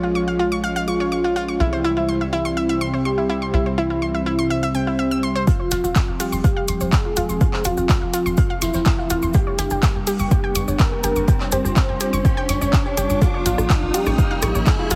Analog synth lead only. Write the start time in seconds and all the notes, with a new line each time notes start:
Already playing: F4
0.88 F4
1.60 E4
2.33 E4
3.05 G4
3.78 E4
4.75 C4
5.47 F4
6.20 G4
6.93 G#4
7.65 F4
8.62 E4
9.34 G4
10.07 G4
10.80 A#4
11.52 C5
12.49 C#5
13.22 F4
13.94 G4
14.67 G#4